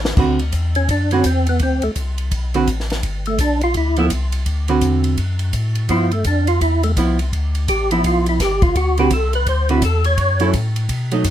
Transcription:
Already playing: A1
0.05 snare
0.17 D2 D3 C4 F#4 B4, kick, crash
0.39 ride
0.52 E2, kick, hi-hat pedal, ride
0.75 C#4, ride
0.89 F#2 D4, kick, ride
1.11 D3 C4 C#4 F#4 B4, ride
1.24 E2 C4, kick, hi-hat pedal, ride
1.46 B3, ride
1.59 D2 C4, kick, ride
1.82 D2 A3, ride
1.96 C2, kick, hi-hat pedal, ride
2.18 ride
2.31 B1, kick, ride
2.54 D3 C4 F#4 B4, ride
2.67 A1, kick, hi-hat pedal, ride
2.80 snare
2.90 snare, ride
3.03 G1, kick, ride
3.25 A3, ride
3.38 B1 D4, kick, hi-hat pedal, ride
3.61 F4, ride
3.74 D2 E4, kick, ride
3.96 F3 B3 E4 A4, ride
4.10 C2, kick, hi-hat pedal, ride
4.32 ride
4.46 D2, kick, ride
4.68 D3 C4 F#4 B4, ride
4.81 E2, kick, hi-hat pedal, ride
5.04 ride
5.17 F#2, kick, ride
5.39 ride
5.53 A2, kick, hi-hat pedal, ride
5.75 ride
5.89 G2 F3 B3 E4 F4, kick, ride
6.11 A3, ride
6.24 F2 D4, kick, hi-hat pedal, ride
6.47 F4, ride
6.61 E2 E4, kick, ride
6.83 A3, ride
6.96 C2 F3 B3 E4, kick, hi-hat pedal, ride
7.19 ride
7.33 D2, kick, ride
7.55 ride
7.68 A1 G4, kick, hi-hat pedal, ride
7.91 F3 B3 E4, ride
8.04 B1 F4, kick, ride
8.26 E4, ride
8.39 G1 G4, kick, snare, hi-hat pedal, ride
8.62 F4, kick, ride
8.75 D2 F#4, kick, ride
8.97 D3 C4 F#4 G4 B4, ride
9.10 C2 A4, kick, hi-hat pedal, ride
9.33 B4, ride
9.46 D2 C5, kick, ride
9.69 D3 C4 E4 F#4 B4, ride
9.82 E2 A4, kick, hi-hat pedal, ride
10.04 C#5, ride
10.17 F#2, kick, ride
10.40 F#3 C#4 E4 A4, ride
10.53 A2, kick, hi-hat pedal, ride
10.76 ride
10.89 B2, kick, ride
11.11 F#3 A3 D#4, ride
11.24 F#2, kick, hi-hat pedal, ride

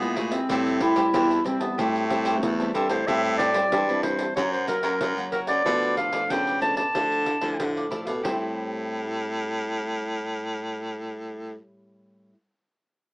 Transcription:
Already playing: A#2 B3
0.01 G#3 E4 G#4 B4 E5, pandeiro
0.16 A3 E4 G#4 B4 E5, pandeiro
0.31 C4 G#4 B4 E5, pandeiro
0.49 A2 G3 C4 E4 G4 C5 E5 A5, pandeiro
0.66 pandeiro
0.80 E4 G4 C5 E5 A5, pandeiro
0.96 G3 C4 E4 G4 C5 E5 A5, pandeiro
1.13 E2 E3 G4 C5 E5 A5, pandeiro
1.30 C5 E5 A5, pandeiro
1.44 G3 C4 E4, pandeiro
1.60 B3 C5 E5 A5, pandeiro
1.78 A2 A3 G4 C5 E5 A5, pandeiro
1.96 pandeiro
2.10 G3 C4 E4 G4 C5 E5 A5, pandeiro
2.25 G4 C5 E5 A5, pandeiro
2.43 E2 E3, pandeiro
2.60 G3 C4 E4 C5 E5 A5, pandeiro
2.74 G2 G4 A4 C5 E5 A5, pandeiro
2.89 A2 C5 E5 A5, pandeiro
3.07 A2 G3 C4 E4 G4 C5 E5 A5, pandeiro
3.25 pandeiro
3.38 G4 C5 D5 E5 A5, pandeiro
3.53 G3 C4 E4 G4 C5 E5 A5, pandeiro
3.72 G2 E3 G4 C5 E5 A5, pandeiro
3.89 G3 C4 E4 C5 E5 A5, pandeiro
4.03 C5, pandeiro
4.19 C5 E5 A5, pandeiro
4.35 F#2 F#3 A#3 C#4 F#4 A#4 C#5 F#5, pandeiro
4.53 C5, pandeiro
4.67 F#3 A#3 C#4 F#4 A#4 C#5 F#5, pandeiro
4.83 F#2 F#4 A#4 C#5 F#5, pandeiro
5.01 F#2 C#3, pandeiro
5.18 F#3 A#3 C#4 A#4 C#5 F#5, pandeiro
5.32 F#4 A#4 C#5 F#5, pandeiro
5.47 F#2 A#4 C#5 D5 F#5, pandeiro
5.65 B2 F3 A3 D4 F4 A4 B4 D5, pandeiro
5.83 pandeiro
5.97 F4 A4 B4 D5 F5, pandeiro
6.12 F3 A3 D4 F4 A4 B4 D5, pandeiro
6.29 B2 C#3 F4 A4 B4 D5 G5, pandeiro
6.47 A4 B4 D5, pandeiro
6.61 F3 A3 D4 A5, pandeiro
6.76 A4 B4 D5 A5, pandeiro
6.94 D3 F3 A3 A4 D5 F5, pandeiro
7.12 pandeiro
7.26 E4 A4 D5 F5, pandeiro
7.41 D3 F3 A3 E4 A4 D5 F5, pandeiro
7.59 A2 D3, pandeiro
7.76 A4 D5 F5, pandeiro
7.91 F3 A3 E4 A4 D5 F5, pandeiro
8.05 B2 A4 D5 F5, pandeiro
8.23 A2 G3 G4 C5 E5 A5, pandeiro
8.27 C4 E4

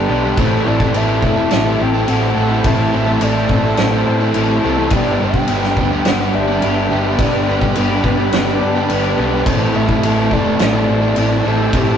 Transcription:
Already playing: G2 D3 D4 G4 B4 D5 B5
0.09 B1 G2 D3 G3 B3 D4 G4
0.23 G3 B3 D4 G4
0.37 A1 A2 E3 A3 C4 E4 G4 A4 C5 E5 A5, kick, crash
0.65 A1 E3 C4 E4 A4 D5
0.79 C4 E4 A4, kick
0.94 A1 A2 E3 C4 E4 A4 E5, crash
1.08 C4 E4 A4
1.22 E1 E3 A3 C4 E4 A4 E5, kick
1.37 C4 E4 A4
1.51 A1 G4, snare, crash
1.65 C4 E4 A4
1.79 A1 E3 C4 E4 A4 G5
1.94 C4 E4 A4
2.07 A1 A2 E3 C4 E4 A4 F#5, crash
2.36 A1 A2 E3 A3 C4 E4 A4
2.51 C4 E4 A4
2.64 A1 A2 E3 A3 C4 E4 A4 E5, kick, crash
2.93 A1 E3 C4 E4 A4
3.07 C4 E4 A4
3.21 A1 A2 E3 C4 E4 A4 D5, crash
3.35 C4 E4 A4
3.49 A1 E3 A3 C4 E4 A4, kick
3.64 C4 E4 A4
3.77 A1 G4 C5, snare, crash
3.92 C4 E4 A4
4.05 A2 E3 C4 E4 A4
4.21 C4 E4 A4
4.34 A1 A2 E3 C4 E4 A4, crash
4.63 C2 A2 E3 A3 C4 E4 A4
4.77 C4 E4 A4
4.90 G1 G2 D3 G3 B3 D4 G4 B4 D5 B5, kick, crash
4.94 D5
5.19 G1 G3 B3 D4 G4 G5
5.33 G3 B3 D4 G4, kick
5.48 G1 G2 D3 G3 B3 D4 G4, crash
5.62 G3 B3 D4 G4, snare
5.77 D2 G3 B3 D4 G4, kick
5.90 G3 B3 D4 G4
6.05 G1 G4 F#5, snare, crash
6.19 G3 B3 D4 G4
6.33 G1 G3 B3 D4 G4 E5
6.48 G3 B3 D4 G4
6.62 G1 G2 D3 G3 B3 D4 G4, crash
6.90 G1 G2 D3 G3 B3 D4 G4
7.04 G3 B3 D4 G4
7.19 G1 G2 D3 G3 B3 D4 G4 D5, kick, crash
7.47 G1 G3 B3 D4 G4
7.61 G3 B3 D4 G4, kick
7.75 G1 G2 D3 G3 B3 D4 G4, crash
7.89 G3 B3 D4 G4
8.04 G1 G3 B3 D4 G4, kick
8.17 G3 B3 D4 G4
8.32 G1 G4, snare, crash
8.46 G3 B3 D4 G4
8.60 G2 G3 B3 D4 G4
8.74 G3 B3 D4 G4
8.89 G1 G2 D3 G3 B3 D4 G4 B4, crash
9.17 B1 G2 D3 G3 B3 D4 G4
9.32 G3 B3 D4 G4
9.46 A1 A2 E3 A3 C4 E4 A4 C5 E5 A5, kick, crash
9.75 A1 E3 C4 E4 A4 E5
9.88 C4 E4 A4, kick
10.02 A1 A2 E3 C4 E4 A4, crash
10.16 C4 E4 A4
10.31 E1 E3 A3 C4 E4 A4 D5, kick
10.45 C4 E4 A4
10.59 A1 G4 D5, snare, crash
10.73 C4 E4 A4
10.88 A1 E3 C4 E4 A4
11.02 C4 E4 A4
11.16 A1 A2 E3 C4 E4 A4, crash
11.44 A1 A2 E3 A3 C4 E4 A4 C5
11.59 C4 E4 A4
11.73 A1 A2 E3 A3 C4 E4 G4 A4 F#5, kick, crash

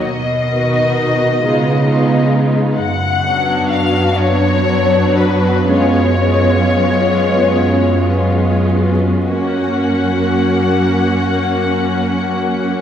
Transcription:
0.03 B2 D#5
0.50 D#3 B3 D#4 F#4
1.40 C#3 G#3 B3 D#4 F4
1.84 G#3 B3 D#4 F4
2.77 F#2 F#5
3.22 F#3 B3 D4 F#4
3.70 F5
4.16 F#2 C#5
4.65 F#3 B3 D4 F#4
5.16 B4
5.66 F#2 G#3 B3 C#4 F4 C#5
6.20 G#3 B3 C#4 F4
7.38 F#2
8.00 G#3 B3 C#4 F4
9.29 F#2 A#3 C#4 F#4 F#5

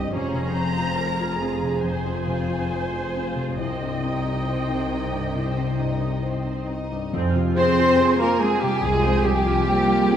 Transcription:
Already playing: C2 G2 C3 G3 C4 G4 C5 D#5
0.12 F1 F2 F3 C#4 G#4 C5 A#5
0.34 C3 C4
0.55 C4 F4 G#4 C5
0.77 F4 C5
0.97 F4 G#4 A#4 C5
1.20 F4 C5
1.38 C4 F4 G#4
1.62 C3 C4
1.82 F2 F3 G#4 C5 G#5
2.05 C4 F4
2.25 C3 C4 F4 G#4 C5
2.48 F4 C5
2.70 F4 G#4 C5
2.92 F4 C5
3.14 C4 F4 G#4
3.36 C3 C4
3.57 C2 C3 C4 C5 D#5 G5
3.80 G2 G3
4.02 C4 D#4 D#5
4.24 D#4
4.46 C4 C5
4.69 D#4
4.91 C4 D#4 D#5
5.12 G2 G3
5.35 C2 C3 C4 C5
5.57 C4
5.79 G2 G3 D#4 D#5
6.01 D#4
6.23 C4 C5
6.45 D#4
6.68 C4 D#4 D#5
6.91 G2 G3
7.13 F2 F3 C4 G#5
7.35 C3 C4 F4
7.55 C4 F4 G#4 C5 C6
7.77 F4 C5
7.99 F4 G#4 C5
8.19 A#3 F4 A#4 A#5
8.39 G#3 C4 F4 G#4 G#5
8.60 C3 G3 C4 F4 G4 G5
8.82 C2 F2 F3 G#3 G#4 G#5
9.04 C4 F4 C5
9.23 C3 G3 C4 G4 G#4 G5
9.45 F4 C5
9.66 A#3 C4 F4 C5
9.87 F4
10.08 C4 F4 G#4

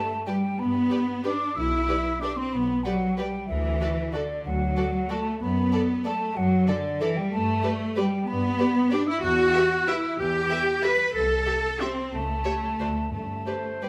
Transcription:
Already playing: A3 A5
0.26 G3 G4 B4 D5 G5
0.58 G2 B3 B5
0.90 G4 B4 D5
1.24 D4 G4 B4 D5 D6
1.56 B1 E4 E6
1.88 G4 B4 D5
2.21 D4 G4 B4 D5 D6
2.37 C4 C6
2.52 B1 B3 B5
2.84 F#3 G4 B4 D5 F#5
3.18 G3 G4 B4 D5 G5
3.48 D2 E3 E5
3.81 F#4 A4 D5
4.13 D3 F#4 A4 D5
4.45 D2 F#3 F#5
4.76 F#4 A4 D5
5.09 A3 F#4 A4 D5 A5
5.41 F#2 B3 B5
5.72 A4 D5
6.05 A3 A4 D5 A5
6.36 F#2 F#3 F#5
6.67 D3 A4 D5
7.00 E3 A4 D5 E5
7.15 G3 G5
7.31 G2 A3 A5
7.63 G4 B4 D5
7.96 G3 G4 B4 D5 G5
8.27 G2 B3 B5
8.59 G4 B4 D5
8.90 D4 G4 B4 D5 D6
9.07 E4 E6
9.22 E2 F#4 F#6
9.54 G4 B4 E5
9.87 E4 G4 B4 E5 E6
10.19 E2 G4 G6
10.50 G4 B4 E5
10.83 G4 B4 E5 B6
11.15 C2 A4 A6
11.46 G4 A4 E5
11.80 C4 G4 A4 E5 C6
12.12 C#2 A3 A5
12.44 G4 C#5 E5
12.79 D2 F#4 C5 D5
13.12 G2 A3 A5
13.46 G4 B4 C5 D5
13.81 G3 G4 B4 D5 G5

